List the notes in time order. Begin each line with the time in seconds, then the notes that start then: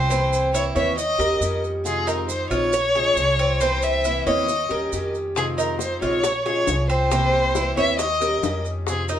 Already playing: C2 F4 C5
0.09 C3 E3 A#3 C4 E4, maracas
0.33 maracas
0.52 E3 A#3 C4 E4 C#5, maracas
0.75 D#2 E3 A#3 C4 E4 C#5 E5, maracas
0.97 D#5, muted steel-string acoustic guitar stroke, maracas
1.18 D#2 G3 C#4 G4 A#4, maracas
1.40 F2 D#3 G3 C#4 G4, maracas
1.64 maracas
1.84 C3 D#3 G#3 C4 F4 G#4, maracas
2.07 D#4 A#4, maracas
2.28 D#3 G#3 C4 F4 C5, maracas
2.50 A#1 D#3 G#3 C4 F4 C#5, maracas
2.73 C#5, muted steel-string acoustic guitar stroke, maracas
2.95 G#3 C#4 F4 G#4
3.16 C2 F3 G#3 C#4 F4, maracas
3.39 C4, maracas
3.60 C3 E3 A#3 C4 E4 C5, maracas
3.82 E5, maracas
4.04 E3 A#3 C4 E4, maracas
4.26 D#2 E3 A#3 C4 E4 C#5 D#5, maracas
4.48 muted steel-string acoustic guitar stroke, maracas
4.69 D#2 G3 C#4 G4 A#4
4.91 F2 D#3 G3 C#4 G4, maracas
5.15 maracas
5.35 C3 D#3 G#3 C4 F4 G#4, high bongo, maracas
5.58 D#4 A#4, high bongo, maracas
5.79 D#3 G#3 C4 F4 C5, high bongo, maracas
6.01 A#1 D#3 G#3 C4 F4 C#5, high bongo, maracas
6.24 C#5, muted steel-string acoustic guitar stroke, high bongo, maracas
6.45 G#3 C#4 F4 G#4 C#5, high bongo
6.67 C2 F3 G#3 C#4 F4, high bongo, low bongo, maracas
6.90 C4 C5, maracas
7.11 C3 E3 A#3 C4 E4, high bongo, maracas
7.33 high bongo
7.55 E3 A#3 C4 E4, high bongo, maracas
7.76 D#2 E3 A#3 C4 E4 C#5 E5, high bongo, maracas
7.99 D#5, muted steel-string acoustic guitar stroke, high bongo, maracas
8.20 G3 C#4 G4 A#4, high bongo, maracas
8.42 F2 D#3 G3 C#4 G4, high bongo, low bongo, maracas
8.65 maracas
8.87 C3 D#3 G#3 C4 F4 G#4, high bongo, maracas
9.09 D#4 A#4, high bongo, maracas